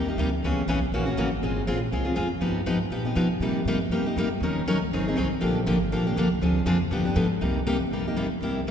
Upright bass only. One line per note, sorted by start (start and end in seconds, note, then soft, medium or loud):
0.00 0.17 D#2 medium
0.17 0.42 D2 medium
0.43 0.67 C#2 medium
0.67 0.91 B1 medium
0.92 1.16 A#1 medium
1.17 1.41 A1 loud
1.42 1.67 G#1 medium
1.68 1.92 A#1 medium
1.92 2.17 C2 medium
2.18 2.40 F2 medium
2.41 2.66 G2 medium
2.66 2.90 G#2 medium
2.90 3.15 A#2 medium
3.16 3.40 B2 medium
3.40 3.65 C3 medium
3.65 3.89 G#2 medium
3.89 4.15 G2 medium
4.16 4.40 F2 medium
4.41 4.65 D#2 medium
4.66 4.90 C#2 medium
4.91 5.15 G#1 medium
5.16 5.29 C2 loud
5.42 5.66 A#1 medium
5.67 5.91 G#1 medium
5.92 6.16 A#1 medium
6.16 6.40 C2 medium
6.41 6.65 D2 loud
6.66 6.90 F2 medium
6.91 7.15 G2 medium
7.16 7.40 G#2 loud
7.41 7.81 C2 medium
7.91 8.30 G1 medium
8.41 8.71 C2 medium